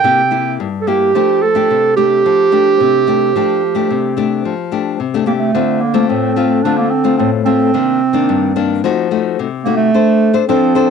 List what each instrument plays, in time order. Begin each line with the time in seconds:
Already playing: clarinet G5
0.04 nylon-string guitar C3 A#3 E4 G4
0.31 nylon-string guitar A#3 E4 G4
0.60 nylon-string guitar G2
0.81 clarinet A4
0.87 nylon-string guitar A#3 E4 G4, clarinet G4
1.15 nylon-string guitar F3 A3 D4 G4
1.42 clarinet A4
1.55 nylon-string guitar A3 D4 G4
1.70 nylon-string guitar C3
1.97 nylon-string guitar A3 D4 G4, clarinet G4
2.26 nylon-string guitar F3
2.52 nylon-string guitar A3 D4 G4
2.80 nylon-string guitar C3
3.07 nylon-string guitar A3 D4 G4
3.36 nylon-string guitar F3 A3 D4 G4
3.75 nylon-string guitar A3 D4 G4
3.90 nylon-string guitar C3
4.17 nylon-string guitar A3 D4 G4
4.45 nylon-string guitar F3
4.72 nylon-string guitar A3 D4 G4
5.00 nylon-string guitar C3
5.14 nylon-string guitar A3 D4 G4
5.26 nylon-string guitar A3 D4 G4, clarinet A#3
5.39 clarinet A3
5.55 nylon-string guitar D3 A3 C4 F4
5.81 clarinet A#3
5.94 nylon-string guitar A3 C4 F4
6.09 nylon-string guitar A2, clarinet C4
6.36 nylon-string guitar A3 C4 F4
6.63 nylon-string guitar D3 A3 C4 F4, clarinet D4
6.78 clarinet A#3
6.90 clarinet C4
7.04 nylon-string guitar A3 C4 F4
7.18 nylon-string guitar A2, clarinet C4
7.45 nylon-string guitar A3 C4 F4, clarinet C4
7.74 nylon-string guitar C3 D#3 A#3 D4
8.13 nylon-string guitar D#3 A#3 D4
8.29 nylon-string guitar G2
8.56 nylon-string guitar D#3 A#3 D4
8.84 nylon-string guitar F3 A3 D#4 F#4
9.11 nylon-string guitar A3 D#4 F#4
9.39 nylon-string guitar C3
9.64 nylon-string guitar A3 D#4 F#4, clarinet A#3
9.77 clarinet A3
9.94 nylon-string guitar D4 A4 C5
10.33 nylon-string guitar D4 A4 C5
10.48 nylon-string guitar F3 D4 A4 C5, clarinet C4
10.75 nylon-string guitar D4 A4 C5